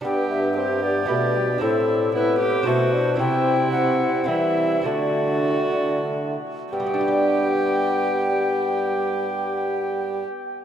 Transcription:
<<
  \new Staff \with { instrumentName = "Recorder" } { \time 3/4 \key g \major \tempo 4 = 102 g''8 e''4 d''8 d''4 | a'4 b'4 c''4 | g''4 fis''4 e''4 | d''2 r4 |
g''2.~ | g''2. | }
  \new Staff \with { instrumentName = "Viola" } { \time 3/4 \key g \major g'4 g'2 | e'4 e'8 g'8 fis'4 | e'2 e'4 | fis'2~ fis'8 r8 |
g'2.~ | g'2. | }
  \new Staff \with { instrumentName = "Lute" } { \time 3/4 \key g \major <d' g' b'>2 <d' g' b'>4 | <c' e' a'>2 <e' a' c''>4 | <c' e'>2 <c' e'>4 | <a d' fis'>2. |
<g, g b d' g' d''>2.~ | <g, g b d' g' d''>2. | }
  \new Staff \with { instrumentName = "Lute" } { \clef bass \time 3/4 \key g \major g,2 b,4 | a,2 b,4 | c2 e4 | d2~ d8 r8 |
r2. | r2. | }
  \new Staff \with { instrumentName = "Bassoon" } { \time 3/4 \key g \major b4 c'8 b8 a8 g8 | c'4 b4 a8 d'8 | c'2 g4 | a2~ a8 r8 |
b2.~ | b2. | }
  \new Staff \with { instrumentName = "Bassoon" } { \clef bass \time 3/4 \key g \major g,2 b,4 | a,2 b,4 | c2 e4 | d2~ d8 r8 |
g2.~ | g2. | }
>>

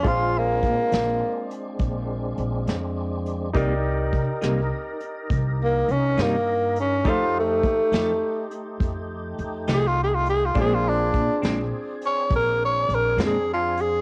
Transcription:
<<
  \new Staff \with { instrumentName = "Grand piano" } { \time 12/8 \key bes \mixolydian \tempo 4. = 68 <f' aes' c'' f''>1. | <ees' g' bes' d''>1. | <ees' g' a' c''>1. | <d' f' aes' c''>1. | }
  \new Staff \with { instrumentName = "Tenor saxophone" } { \time 12/8 \key bes \mixolydian f'8 bes2 r2. r8 | r2. r8 bes8 des'8 bes4 des'8 | f'8 a2 r2 aes'16 f'16 aes'16 f'16 aes'16 f'16 | aes'16 f'16 d'4 r4 des''8 bes'8 des''8 bes'8 aes'8 f'8 aes'8 | }
  \new Staff \with { instrumentName = "Tonewheel organ" } { \time 12/8 \key bes \mixolydian <aes c' d'>1. | <ees' bes'>1. | <a ees' g'>1. | <c' d' aes'>1. | }
  \new Staff \with { instrumentName = "Clean electric guitar" } { \time 12/8 \key bes \mixolydian r1. | <c g bes ees'>8 r4 <c g bes ees'>8 r2 r8 <c g bes ees'>8 r4 | <f a ees' g'>8 r4 <f a ees' g'>8 r2 r8 <f a ees' g'>8 r4 | <bes, aes c' d'>8 r4 <bes, aes c' d'>8 r2 r8 <bes, aes c' d'>8 r4 | }
  \new Staff \with { instrumentName = "Upright bass" } { \clef bass \time 12/8 \key bes \mixolydian bes,,4 bes,16 r16 bes,,8 r4 bes,,4 bes,,8 f,4. | c,4 c16 r16 c,8 r4 c,4 c,8 g,4. | f,4 f16 r16 f,8 r4 f,4 f,8 c,4. | bes,,4 bes,16 r16 bes,,8 r4 bes,,4 bes,,8 f,4. | }
  \new DrumStaff \with { instrumentName = "Drums" } \drummode { \time 12/8 <hh bd>4 <hh bd>8 <hh sn>4 hh8 <hh bd>4 hh8 <hh sn>4 hh8 | <hh bd>4 <hh bd>8 <hh sn>4 hh8 <hh bd>4 hh8 <hh sn>4 hh8 | <hh bd>4 <hh bd>8 <hh sn>4 hh8 <hh bd>4 hh8 <hh sn>4 hh8 | <hh bd>4 <hh bd>8 <hh sn>4 hh8 <hh bd>4 hh8 <hh sn>4 hh8 | }
>>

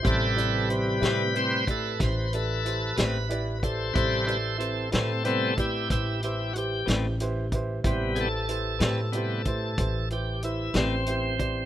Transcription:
<<
  \new Staff \with { instrumentName = "Grand piano" } { \time 12/8 \key a \minor \tempo 4. = 62 <e' g' b' c''>8 <e' g' b' d''>8 <e' g' b' c''>8 <e' g' b' c''>8 <e' g' b' c''>8 <e' g' b' d''>8 <e' g' b' c''>8 <e' g' b' d''>8 <e' g' b' c''>8 <e' g' b' c''>8 <e' g' b' d''>8 <e' g' b' d''>8 | <e' g' b' c''>8 <e' g' b' d''>8 <e' g' b' c''>8 <e' g' b' c''>8 <e' g' b' c''>8 <e' g' b' d''>8 <e' g' b' c''>8 <e' g' b' c''>8 <e' g' b' c''>8 <e' g' b' c''>8 <e' g' b' c''>8 <e' g' b' c''>8 | <e' g' b' c''>8 <e' g' b' c''>8 <e' g' b' c''>8 <e' g' b' c''>8 <e' g' b' c''>8 <e' g' b' c''>8 <e' g' b' c''>8 <e' g' b' c''>8 <e' g' b' c''>8 <e' g' b' d''>8 <e' g' b' c''>8 <e' g' b' d''>8 | }
  \new Staff \with { instrumentName = "Tonewheel organ" } { \time 12/8 \key a \minor a'4 r4 c''8 a'8 c''8 a'4 r4 <a' b' c''>8 | <a' c''>8 <a' c''>8 <c' a'>8 <c' a'>8 <c' a'>8 <e' g'>8 <e' g'>8 <e' g'>8 <fis' g'>8 r4. | r8 <gis' a'>2. g'8 e'8 c'4. | }
  \new Staff \with { instrumentName = "Tonewheel organ" } { \clef bass \time 12/8 \key a \minor <c g b'>2 <c g c'>8 r2. r8 | <c g b'>8 r4. <c g b>8 r2. r8 | <c g b>8 r4. <c g b>8 r2. r8 | }
  \new Staff \with { instrumentName = "Clean electric guitar" } { \time 12/8 \key a \minor r4. <a c' g' b'>8 r2 r8 <a c' g' b'>8 r4 | r4. <a c' g' b'>8 r2 r8 <a c' g' b'>8 r4 | r4. <a c' g' b'>8 r2 r8 <a c' g' b'>8 r4 | }
  \new Staff \with { instrumentName = "Upright bass" } { \clef bass \time 12/8 \key a \minor a,,4. a,4. a,,4. a,,4. | a,,4. a,4. a,,4. a,,4. | a,,4. a,4. a,,4. a,,4. | }
  \new DrumStaff \with { instrumentName = "Drums" } \drummode { \time 12/8 <hh bd>8 hh8 hh8 <hh sn>8 hh8 <hh bd>8 <hh bd sn>8 hh8 hh8 <hh sn>8 hh8 <hh bd>8 | <hh bd>8 hh8 hh8 <hh sn>8 hh8 <hh bd>8 <hh bd>8 hh8 hh8 <hh sn>8 hh8 <hh bd>8 | <hh bd>8 hh8 hh8 <hh sn>8 hh8 <hh bd>8 <hh bd>8 hh8 hh8 <hh sn>8 hh8 <hh bd>8 | }
>>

